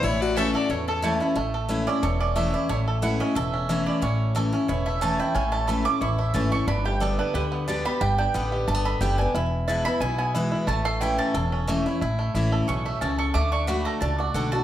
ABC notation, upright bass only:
X:1
M:4/4
L:1/8
Q:"Swing" 1/4=180
K:A
V:1 name="Upright bass" clef=bass
A,,,4 E,,4 | A,,,4 E,,,4 | A,,,4 E,,,4 | A,,,4 E,,,4 |
A,,,4 A,,,2 G,,,2 | =G,,,4 D,,4 | =G,,,2 A,,,2 G,,,2 F,,,2 | E,,,4 B,,,4 |
A,,,4 E,,,4 | A,,,2 A,,,2 B,,,2 C,,2 | D,,4 C,,2 B,,,2 |]